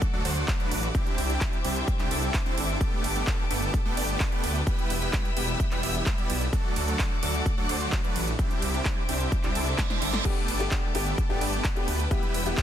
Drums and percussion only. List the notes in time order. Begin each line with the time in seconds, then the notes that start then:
0.02 kick, closed hi-hat
0.25 open hi-hat, ride
0.37 closed hi-hat
0.48 kick, clap, closed hi-hat
0.60 closed hi-hat
0.71 open hi-hat, ride
0.83 closed hi-hat
0.95 kick, closed hi-hat
1.06 closed hi-hat
1.18 open hi-hat, ride
1.30 closed hi-hat
1.41 kick, clap, closed hi-hat
1.53 closed hi-hat
1.65 open hi-hat, ride
1.76 closed hi-hat
1.88 kick, closed hi-hat
1.99 clap, closed hi-hat
2.11 open hi-hat, ride
2.23 closed hi-hat
2.34 kick, clap, closed hi-hat
2.46 closed hi-hat
2.58 open hi-hat, ride
2.69 closed hi-hat
2.81 kick, closed hi-hat
3.04 open hi-hat, ride
3.16 closed hi-hat
3.27 kick, clap, closed hi-hat
3.51 open hi-hat, ride
3.62 closed hi-hat
3.74 kick, closed hi-hat
3.97 open hi-hat, ride
4.09 closed hi-hat
4.20 kick, clap, closed hi-hat
4.32 closed hi-hat
4.44 open hi-hat, ride
4.55 closed hi-hat
4.67 kick, closed hi-hat
4.79 closed hi-hat
4.90 open hi-hat, ride
5.02 closed hi-hat
5.13 kick, clap, closed hi-hat
5.25 closed hi-hat
5.37 open hi-hat, ride
5.48 closed hi-hat
5.60 kick, closed hi-hat
5.71 clap, closed hi-hat
5.83 open hi-hat, ride
5.95 closed hi-hat
6.06 kick, clap, closed hi-hat
6.18 closed hi-hat
6.30 open hi-hat, ride
6.41 closed hi-hat
6.53 kick, closed hi-hat
6.76 open hi-hat, ride
6.88 closed hi-hat
6.99 kick, clap, closed hi-hat
7.23 open hi-hat, ride
7.34 closed hi-hat
7.46 kick, closed hi-hat
7.69 open hi-hat, ride
7.81 closed hi-hat
7.92 kick, clap, closed hi-hat
8.04 closed hi-hat
8.16 open hi-hat, ride
8.27 closed hi-hat
8.39 kick, closed hi-hat
8.51 closed hi-hat
8.62 open hi-hat, ride
8.74 closed hi-hat
8.85 kick, clap, closed hi-hat
9.09 open hi-hat, ride
9.20 closed hi-hat
9.32 kick, closed hi-hat
9.44 clap, closed hi-hat
9.55 open hi-hat, ride
9.67 closed hi-hat
9.78 kick, snare, clap, closed hi-hat
9.90 snare, closed hi-hat
10.02 open hi-hat, ride
10.13 snare, closed hi-hat
10.25 kick, closed hi-hat, crash
10.48 open hi-hat, ride
10.60 closed hi-hat
10.71 kick, clap, closed hi-hat
10.95 open hi-hat, ride
11.06 closed hi-hat
11.18 kick, closed hi-hat
11.41 open hi-hat, ride
11.53 closed hi-hat
11.64 kick, clap, closed hi-hat
11.76 closed hi-hat
11.88 open hi-hat, ride
11.99 closed hi-hat
12.11 kick, closed hi-hat
12.23 closed hi-hat
12.34 open hi-hat, ride
12.46 closed hi-hat
12.57 kick, clap, closed hi-hat